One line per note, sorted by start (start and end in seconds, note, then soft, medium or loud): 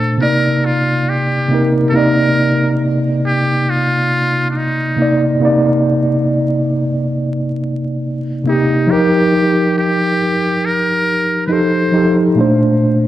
0.00 0.21 A#2 medium
0.00 0.22 A3 medium
0.00 0.22 D4 medium
0.00 0.16 A4 loud
0.00 0.22 C5 loud
0.17 1.25 C3 medium
0.17 1.26 A#3 medium
0.17 1.27 D#4 medium
0.22 0.67 A#4 loud
0.22 1.28 D5 medium
0.65 1.11 F4 medium
1.09 1.76 G4 medium
1.49 1.83 C3 medium
1.49 1.84 A#3 medium
1.49 1.85 D#4 medium
1.54 1.86 A#4 medium
1.89 3.21 C3 medium
1.89 1.97 A4 medium
1.94 3.22 A#3 medium
1.94 3.23 D#4 medium
1.94 2.82 A#4 loud
1.94 3.24 D5 medium
3.27 3.71 G4 loud
3.70 4.50 F4 loud
4.50 4.58 D4 medium
4.57 5.23 D#4 medium
4.96 5.31 C3 medium
4.96 5.31 A#3 medium
4.96 5.32 D#4 medium
5.02 5.33 D5 medium
5.39 6.69 C3 medium
5.39 6.70 A#3 medium
5.39 6.71 D#4 medium
5.45 6.72 D5 medium
8.44 8.78 C3 medium
8.44 8.79 A#3 medium
8.44 8.92 D#4 medium
8.44 8.80 D#4 medium
8.49 8.81 G4 medium
8.87 10.17 F3 medium
8.87 10.18 D#4 medium
8.91 9.77 G4 loud
8.91 10.19 G4 medium
8.91 10.20 A#4 loud
9.78 10.67 G4 loud
10.65 11.45 A#4 loud
11.46 11.85 F3 medium
11.46 11.86 D#4 medium
11.46 11.54 B4 medium
11.51 11.86 G4 medium
11.51 11.87 A4 medium
11.51 12.19 C5 medium
11.92 12.26 F3 medium
11.92 12.27 D#4 medium
11.92 12.28 G4 medium
11.97 12.29 A4 medium
12.35 13.07 A#2 medium
12.35 13.07 A3 medium
12.35 13.07 D4 medium
12.41 13.07 C5 medium